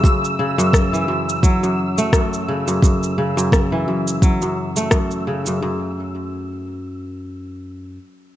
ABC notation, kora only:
X:1
M:4/4
L:1/16
Q:"Swing 16ths" 1/4=86
K:A
V:1 name="Kora" clef=bass
F,,2 C, F,,2 E, F,,2 F, F,,2 A, F,,2 C, F,, | F,,2 C, F,,2 E, F,,2 F, F,,2 A, F,,2 C, F,, | F,,2 z12 z2 |]